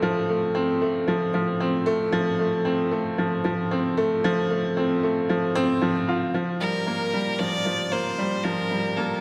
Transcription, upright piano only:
0, 0, Header, 1, 2, 480
1, 0, Start_track
1, 0, Key_signature, -2, "minor"
1, 0, Tempo, 526316
1, 24, Time_signature, 4, 2, 24, 8
1, 8397, End_track
2, 0, Start_track
2, 0, Title_t, "Upright piano"
2, 0, Program_c, 0, 0
2, 0, Control_c, 0, 64, 127
2, 0, Note_on_c, 0, 53, 70
2, 0, Note_on_c, 0, 57, 83
2, 0, Note_on_c, 0, 60, 73
2, 21, Note_off_c, 0, 53, 0
2, 21, Note_on_c, 0, 53, 85
2, 251, Note_off_c, 0, 53, 0
2, 264, Note_off_c, 0, 57, 0
2, 264, Note_on_c, 0, 57, 69
2, 492, Note_off_c, 0, 57, 0
2, 499, Note_off_c, 0, 60, 0
2, 499, Note_on_c, 0, 60, 70
2, 638, Note_off_c, 0, 60, 0
2, 742, Note_on_c, 0, 57, 72
2, 971, Note_off_c, 0, 57, 0
2, 981, Note_on_c, 0, 53, 76
2, 1207, Note_off_c, 0, 53, 0
2, 1221, Note_on_c, 0, 53, 75
2, 1451, Note_off_c, 0, 53, 0
2, 1463, Note_on_c, 0, 60, 70
2, 1691, Note_off_c, 0, 60, 0
2, 1697, Note_on_c, 0, 57, 97
2, 1837, Note_off_c, 0, 57, 0
2, 1937, Note_on_c, 0, 53, 91
2, 2169, Note_off_c, 0, 53, 0
2, 2182, Note_on_c, 0, 57, 73
2, 2411, Note_off_c, 0, 57, 0
2, 2417, Note_on_c, 0, 60, 69
2, 2557, Note_off_c, 0, 60, 0
2, 2657, Note_on_c, 0, 57, 73
2, 2889, Note_off_c, 0, 57, 0
2, 2902, Note_on_c, 0, 53, 74
2, 3128, Note_off_c, 0, 53, 0
2, 3141, Note_on_c, 0, 53, 76
2, 3371, Note_off_c, 0, 53, 0
2, 3386, Note_on_c, 0, 60, 73
2, 3613, Note_off_c, 0, 60, 0
2, 3625, Note_on_c, 0, 57, 93
2, 3761, Note_off_c, 0, 57, 0
2, 3869, Note_on_c, 0, 53, 92
2, 4095, Note_off_c, 0, 53, 0
2, 4109, Note_on_c, 0, 57, 73
2, 4334, Note_off_c, 0, 57, 0
2, 4349, Note_on_c, 0, 60, 68
2, 4483, Note_off_c, 0, 60, 0
2, 4589, Note_on_c, 0, 57, 73
2, 4815, Note_off_c, 0, 57, 0
2, 4828, Note_on_c, 0, 53, 77
2, 5054, Note_off_c, 0, 53, 0
2, 5065, Note_on_c, 0, 60, 102
2, 5293, Note_off_c, 0, 60, 0
2, 5304, Note_on_c, 0, 53, 77
2, 5532, Note_off_c, 0, 53, 0
2, 5549, Note_on_c, 0, 65, 71
2, 5683, Note_off_c, 0, 65, 0
2, 5785, Note_on_c, 0, 53, 74
2, 5796, Control_c, 0, 64, 0
2, 5976, Control_c, 0, 64, 127
2, 6013, Note_off_c, 0, 53, 0
2, 6023, Note_on_c, 0, 55, 53
2, 6252, Note_off_c, 0, 55, 0
2, 6261, Note_on_c, 0, 58, 57
2, 6400, Note_off_c, 0, 58, 0
2, 6504, Note_on_c, 0, 55, 59
2, 6732, Note_off_c, 0, 55, 0
2, 6745, Note_on_c, 0, 53, 61
2, 6969, Note_off_c, 0, 53, 0
2, 6983, Note_on_c, 0, 53, 59
2, 7212, Note_off_c, 0, 53, 0
2, 7219, Note_on_c, 0, 58, 57
2, 7450, Note_off_c, 0, 58, 0
2, 7463, Note_on_c, 0, 55, 69
2, 7600, Note_off_c, 0, 55, 0
2, 7700, Note_on_c, 0, 53, 75
2, 7930, Note_off_c, 0, 53, 0
2, 7939, Note_on_c, 0, 55, 60
2, 8170, Note_off_c, 0, 55, 0
2, 8181, Note_on_c, 0, 58, 61
2, 8319, Note_off_c, 0, 58, 0
2, 8397, End_track
0, 0, End_of_file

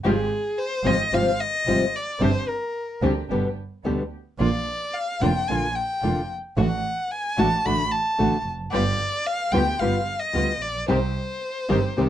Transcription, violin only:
0, 0, Header, 1, 2, 480
1, 0, Start_track
1, 0, Tempo, 542005
1, 43, Time_signature, 4, 2, 24, 8
1, 10708, End_track
2, 0, Start_track
2, 0, Title_t, "Violin"
2, 0, Program_c, 0, 40
2, 50, Note_on_c, 0, 68, 92
2, 519, Note_on_c, 0, 72, 103
2, 532, Note_off_c, 0, 68, 0
2, 761, Note_on_c, 0, 75, 109
2, 775, Note_off_c, 0, 72, 0
2, 1012, Note_on_c, 0, 77, 102
2, 1025, Note_off_c, 0, 75, 0
2, 1244, Note_on_c, 0, 75, 110
2, 1258, Note_off_c, 0, 77, 0
2, 1733, Note_on_c, 0, 74, 90
2, 1746, Note_off_c, 0, 75, 0
2, 1970, Note_on_c, 0, 72, 104
2, 1983, Note_off_c, 0, 74, 0
2, 2202, Note_on_c, 0, 70, 80
2, 2215, Note_off_c, 0, 72, 0
2, 2681, Note_off_c, 0, 70, 0
2, 3903, Note_on_c, 0, 74, 92
2, 4375, Note_on_c, 0, 77, 95
2, 4389, Note_off_c, 0, 74, 0
2, 4620, Note_on_c, 0, 79, 94
2, 4633, Note_off_c, 0, 77, 0
2, 4853, Note_on_c, 0, 80, 96
2, 4866, Note_off_c, 0, 79, 0
2, 5099, Note_on_c, 0, 79, 91
2, 5113, Note_off_c, 0, 80, 0
2, 5581, Note_off_c, 0, 79, 0
2, 5835, Note_on_c, 0, 78, 88
2, 6301, Note_on_c, 0, 80, 100
2, 6315, Note_off_c, 0, 78, 0
2, 6546, Note_on_c, 0, 81, 105
2, 6559, Note_off_c, 0, 80, 0
2, 6782, Note_on_c, 0, 83, 109
2, 6795, Note_off_c, 0, 81, 0
2, 7009, Note_on_c, 0, 81, 96
2, 7022, Note_off_c, 0, 83, 0
2, 7489, Note_off_c, 0, 81, 0
2, 7717, Note_on_c, 0, 74, 106
2, 8204, Note_on_c, 0, 77, 111
2, 8217, Note_off_c, 0, 74, 0
2, 8434, Note_on_c, 0, 79, 109
2, 8447, Note_off_c, 0, 77, 0
2, 8675, Note_on_c, 0, 77, 96
2, 8688, Note_off_c, 0, 79, 0
2, 9033, Note_on_c, 0, 75, 103
2, 9046, Note_off_c, 0, 77, 0
2, 9401, Note_on_c, 0, 74, 93
2, 9414, Note_off_c, 0, 75, 0
2, 9640, Note_off_c, 0, 74, 0
2, 9645, Note_on_c, 0, 72, 95
2, 10708, Note_off_c, 0, 72, 0
2, 10708, End_track
0, 0, End_of_file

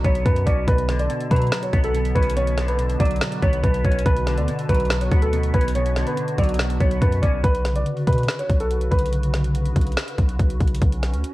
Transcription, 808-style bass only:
0, 0, Header, 1, 2, 480
1, 0, Start_track
1, 0, Key_signature, 2, "minor"
1, 0, Tempo, 422535
1, 770, Time_signature, 4, 2, 24, 8
1, 12880, End_track
2, 0, Start_track
2, 0, Title_t, "808-style bass"
2, 0, Program_c, 0, 38
2, 50, Note_on_c, 0, 35, 99
2, 280, Note_off_c, 0, 35, 0
2, 290, Note_on_c, 0, 42, 107
2, 521, Note_off_c, 0, 42, 0
2, 531, Note_on_c, 0, 35, 104
2, 761, Note_off_c, 0, 35, 0
2, 769, Note_on_c, 0, 35, 107
2, 1231, Note_off_c, 0, 35, 0
2, 1489, Note_on_c, 0, 47, 102
2, 1720, Note_off_c, 0, 47, 0
2, 1969, Note_on_c, 0, 35, 98
2, 2430, Note_off_c, 0, 35, 0
2, 2450, Note_on_c, 0, 35, 106
2, 3372, Note_off_c, 0, 35, 0
2, 3409, Note_on_c, 0, 35, 104
2, 3640, Note_off_c, 0, 35, 0
2, 3890, Note_on_c, 0, 35, 99
2, 4121, Note_off_c, 0, 35, 0
2, 4131, Note_on_c, 0, 35, 109
2, 4361, Note_off_c, 0, 35, 0
2, 4370, Note_on_c, 0, 35, 105
2, 4601, Note_off_c, 0, 35, 0
2, 4610, Note_on_c, 0, 35, 101
2, 4970, Note_on_c, 0, 38, 99
2, 4987, Note_off_c, 0, 35, 0
2, 5084, Note_off_c, 0, 38, 0
2, 5329, Note_on_c, 0, 35, 104
2, 5791, Note_off_c, 0, 35, 0
2, 5810, Note_on_c, 0, 38, 103
2, 6271, Note_off_c, 0, 38, 0
2, 6290, Note_on_c, 0, 35, 106
2, 6866, Note_off_c, 0, 35, 0
2, 7250, Note_on_c, 0, 35, 100
2, 7711, Note_off_c, 0, 35, 0
2, 7730, Note_on_c, 0, 35, 102
2, 7961, Note_off_c, 0, 35, 0
2, 7972, Note_on_c, 0, 42, 108
2, 8201, Note_off_c, 0, 42, 0
2, 8211, Note_on_c, 0, 35, 108
2, 8441, Note_off_c, 0, 35, 0
2, 8450, Note_on_c, 0, 35, 107
2, 8911, Note_off_c, 0, 35, 0
2, 9170, Note_on_c, 0, 47, 104
2, 9401, Note_off_c, 0, 47, 0
2, 9651, Note_on_c, 0, 35, 99
2, 10111, Note_off_c, 0, 35, 0
2, 10132, Note_on_c, 0, 35, 100
2, 11053, Note_off_c, 0, 35, 0
2, 11090, Note_on_c, 0, 35, 103
2, 11321, Note_off_c, 0, 35, 0
2, 11570, Note_on_c, 0, 35, 102
2, 11801, Note_off_c, 0, 35, 0
2, 11811, Note_on_c, 0, 35, 110
2, 12041, Note_off_c, 0, 35, 0
2, 12050, Note_on_c, 0, 35, 101
2, 12281, Note_off_c, 0, 35, 0
2, 12290, Note_on_c, 0, 35, 107
2, 12651, Note_on_c, 0, 38, 96
2, 12668, Note_off_c, 0, 35, 0
2, 12765, Note_off_c, 0, 38, 0
2, 12880, End_track
0, 0, End_of_file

